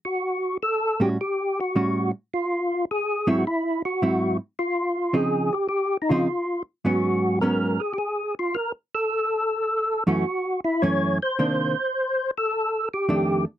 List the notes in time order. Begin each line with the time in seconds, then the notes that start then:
0.05 F#4
0.63 A4
1.00 A2 G3 C#4 F#4 G4
1.21 G4
1.60 F#4
1.76 A2 G3 C#4 F#4
2.34 F4
2.91 G#4
3.27 G#2 F#3 C4 E4 F#4
3.47 E4
3.85 F#4
4.02 G#2 F#3 C4 E4
4.59 F4
5.13 C#3 F3 C4 D#4 G#4
5.53 G4
5.69 G4
6.02 D#4
6.09 C#3 F3 C4 D#4 F4
6.85 G#2 F#3 B3 C#4 F#4
7.41 G#2 F#3 B3 C#4 A#4
7.80 G#4
7.94 G4
7.98 G#4
8.39 F4
8.55 A#4
8.95 A4
10.07 F#2 E3 A3 C#4 F#4
10.64 E4
10.82 F#2 E3 A3 C#4 C#5
11.22 C5
11.39 C3 D#3 A#3 D4
12.38 A4
12.94 G4
13.09 F2 D#3 A3 D4